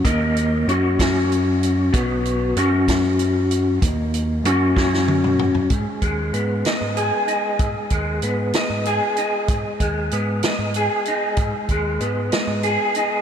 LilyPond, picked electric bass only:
\new Staff \with { instrumentName = "Picked electric bass" } { \clef bass \time 6/8 \key gis \minor \tempo 4. = 64 dis,4 fis,8 fis,4. | b,,4 fis,2 | dis,4 fis,8 fis,4. | gis,16 r16 dis,8 gis,8 r16 gis,8 r8. |
gis,16 r16 dis,8 gis,8 r16 gis,8 r8. | gis,16 r16 dis,8 gis,8 r16 gis,8 r8. | gis,16 r16 dis,8 gis,8 r16 gis,8 r8. | }